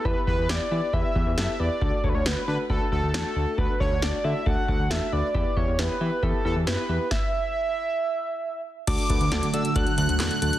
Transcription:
<<
  \new Staff \with { instrumentName = "Analog synth lead" } { \time 4/4 \key d \major \tempo 4 = 136 b'8 b'8 d''4 e''4 e''8 d''8~ | d''8 cis''32 b'32 cis''16 b'8 b'8 a'8 a'8 a'4 | b'8 cis''8 d''8 e''8 fis''4 e''8 d''8~ | d''8 cis''8 b'4 a'8 a'8 b'4 |
e''2.~ e''8 r8 | d'''4. e'''8 fis'''8 fis'''8 fis'''8 fis'''8 | }
  \new Staff \with { instrumentName = "Synth keys" } { \time 4/4 \key d \major <b e' g' b'>8 <b e' g' b'>8 <b e' g' b'>8 <b e' g' b'>8 <b e' g' b'>8 <b e' g' b'>8 <b e' g' a'>8 <b e' g' b'>8 | <a d' fis' a'>8 <a d' fis' a'>8 <a d' fis' b'>8 <a d' fis' a'>8 <a d' fis' b'>8 <a d' fis' a'>8 <a d' fis' a'>8 <a d' fis' a'>8 | <a d' fis' a'>8 <a d' fis' a'>8 <a d' fis' a'>8 <a d' fis' a'>8 <a d' fis' a'>8 <a d' fis' a'>8 <a d' fis' a'>8 <a d' fis' b'>8 | <b e' g' b'>8 <b e' g' cis''>8 <b e' g' b'>8 <b e' g' b'>8 <b e' g' b'>8 <b e' g' b'>8 <b e' g' b'>8 <b e' g' b'>8 |
r1 | <a d' fis' a'>8 <a d' fis' b'>8 <a d' fis' a'>8 <a d' fis' a'>8 <a d' fis' a'>8 <a d' fis' a'>8 <a d' fis' a'>8 <a d' fis' a'>8 | }
  \new Staff \with { instrumentName = "String machine" } { \time 4/4 \key d \major r1 | r1 | r1 | r1 |
r1 | <d a fis'>1 | }
  \new Staff \with { instrumentName = "Analog synth bass" } { \clef bass \time 4/4 \key d \major e,16 r16 e,16 e,16 e,16 r16 e16 r16 e,16 r16 e,16 e,16 fis,16 r16 e,16 r16 | d,16 r16 d,16 d,16 d,16 r16 d16 r16 d,16 r16 d,16 d,16 e,16 r16 d,16 r16 | d,16 r16 d,16 d,16 d,16 r16 d16 r16 d,16 r16 d,16 d,16 e,16 r16 d,16 r16 | e,16 r16 e,16 e,16 e,16 r16 e16 r16 e,16 r16 e,16 e,16 fis,16 r16 e,16 r16 |
r1 | d,16 r16 d,16 d,16 d,16 r16 d16 r16 d,16 r16 d,16 d,16 e,16 r16 d,16 r16 | }
  \new DrumStaff \with { instrumentName = "Drums" } \drummode { \time 4/4 bd8 bd8 sn4 bd8 bd8 sn4 | bd8 bd8 sn4 bd4 sn4 | bd8 bd8 sn4 bd8 bd8 sn4 | bd8 bd8 sn4 bd4 sn4 |
<bd sn>4 r4 r4 r4 | <cymc hh bd>16 hh16 <hh bd>16 hh16 <hh sn>16 hh16 hh16 hh16 <hh bd>16 hh16 hh16 hh16 <hc hh sn>16 hh16 hh16 hh16 | }
>>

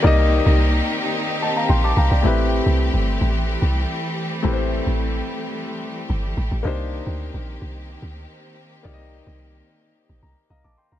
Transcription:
<<
  \new Staff \with { instrumentName = "Grand piano" } { \time 4/4 \key c \lydian \tempo 4 = 109 << { r2 r8 <ees'' a''>16 <f'' bes''>16 <g'' c'''>16 <a'' d'''>16 <f'' bes''>16 <d'' g''>16~ | <d'' g''>16 r2. r8. | r1 | r1 |
r2 r8 bes''8 <ees'' f'' bes''>16 <a'' d'''>16 <g'' c'''>16 <f'' bes''>16 | } \\ { <bes ees' g' d'' ees''>2.~ <bes ees' g' d'' ees''>8 r8 | <a c' e' g' b'>1 | <a c' e' g' b' c''>1 | <bes d' ees' g' c''>1 |
<bes ees' g' d'' ees''>1 | } >> }
  \new Staff \with { instrumentName = "String section" } { \time 4/4 \key c \lydian << { <c' ees' g'>1~ | <c' ees' g'>1~ | <c' ees' g'>1 | g'1~ |
g'1 | } \\ { <ees bes>1 | <e g a>1~ | <e g a>1 | <ees bes c'>1~ |
<ees bes c'>1 | } >> }
  \new Staff \with { instrumentName = "Log drum bass" } { \clef bass \time 4/4 \key c \lydian c,8. c,8. r4. bes,,8 c,16 c,16 | a,,8. c,8 g,,8 a,,8. c,8 r4 | a,,8. a,,8. r4. g,,8 a,,16 a,,16 | c,8. d,8 bes,,8 c,8. d,8 r4 |
c,8. c,8. r8. bes,,16 c,16 r16 c,16 bes,,16 r16 c,16 | }
>>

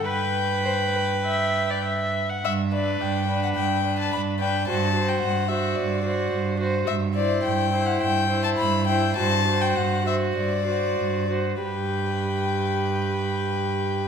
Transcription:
<<
  \new Staff \with { instrumentName = "Violin" } { \time 4/4 \key g \major \tempo 4 = 102 g''2. r4 | e''8 d''8 g''8. fis''16 g''8. a''16 b''8 g''8 | a''8. g''16 fis''8 e''8 d''4. r8 | e''8 d''8 g''8. fis''16 g''8. a''16 b''8 g''8 |
a''8. g''16 fis''8 e''8 d''4. r8 | g''1 | }
  \new Staff \with { instrumentName = "Violin" } { \time 4/4 \key g \major b'4 c''8 b'8 e''8. d''16 e''8. fis''16 | r8 b'4 b'4 b'4 b'8 | c''8 c''4 c''4 c''4 c''8 | r8 c''4 c''4 c''4 c''8 |
c''8 c''4 c''4 c''4 c''8 | b'1 | }
  \new Staff \with { instrumentName = "Viola" } { \time 4/4 \key g \major b'2.~ b'8 r8 | r8 d'4 d'4 d'4 d'8 | fis'8 fis'4 fis'4 fis'4 fis'8 | r8 e'4 e'4 e'4 e'8 |
fis'8 fis'4 fis'4 fis'4 fis'8 | g'1 | }
  \new Staff \with { instrumentName = "Cello" } { \clef bass \time 4/4 \key g \major g,2.~ g,8 r8 | g,4 g,4 g,4 g,4 | g,4 g,4 g,4 g,4 | g,4 g,4 g,4 g,4 |
g,4 g,4 g,4 g,4 | g,1 | }
>>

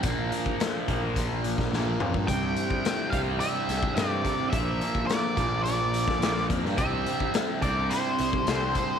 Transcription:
<<
  \new Staff \with { instrumentName = "Lead electric guitar" } { \time 4/4 \key c \mixolydian \tempo 4 = 106 r1 | g''4. f''8 e''4 d''4 | e''4 d''4 d''4. r8 | e''4 r8 d''8 c''2 | }
  \new Staff \with { instrumentName = "Transistor combo organ" } { \time 4/4 \key c \mixolydian << { <bes f'>1 | <c' e'>1 | <bes f'>1 | <c' e'>1 | } \\ { d'1~ | d'1~ | d'1~ | d'1 | } >> }
  \new Staff \with { instrumentName = "Distorted electric guitar" } { \clef bass \time 4/4 \key c \mixolydian <bes, f bes>4. <bes, f bes>4. <bes, f bes>4 | <c g c'>4. <c g c'>4. <c g c'>4 | <bes, f bes>4. <bes, f bes>4. <bes, f bes>4 | <c g c'>4. <c g c'>4. <c g c'>4 | }
  \new Staff \with { instrumentName = "Picked electric bass" } { \clef bass \time 4/4 \key c \mixolydian bes,,8 r4 bes,,4~ bes,,16 bes,,8. f,16 g,16 | c,8 r4 c,8 r8 c,16 r16 g,8 r8 | bes,,8 r4 bes,,4~ bes,,16 bes,,8. f,16 g,16 | c,8 r4 c,8 r8 c,16 r16 c,8 r8 | }
  \new DrumStaff \with { instrumentName = "Drums" } \drummode { \time 4/4 <hh bd>8 hh16 bd16 <hh sn>8 <hh bd>8 <hh bd>8 hh16 <bd sn>16 sn8 toml16 bd16 | <hh bd>8 hh16 bd16 <hh sn>8 <hh bd>8 hh8 <hh sn>16 bd16 <hh sn>8 <hh bd>8 | <hh bd>8 hh16 bd16 <hh sn>8 <hh bd>8 hh8 hh16 <bd sn>16 <hh sn>16 sn16 <hh bd>16 sn16 | <hh bd>8 hh16 bd16 <hh sn>8 <hh bd>8 hh8 hh16 bd16 <hh sn>8 <hh bd>8 | }
>>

